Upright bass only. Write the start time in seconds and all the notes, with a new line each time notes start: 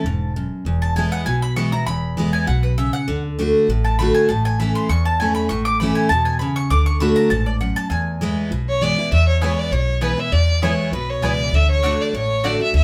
0.04 E1
0.65 E1
1.26 B1
1.87 E1
2.48 B1
3.08 D2
3.68 A1
4.29 A1
4.89 E2
5.50 A1
6.10 E2
6.70 D2
7.30 A1
7.90 E2
8.51 B1
9.12 E2
9.71 B1
10.32 E2
10.92 B1
11.22 C#2
11.52 D2
12.13 A1
12.73 D2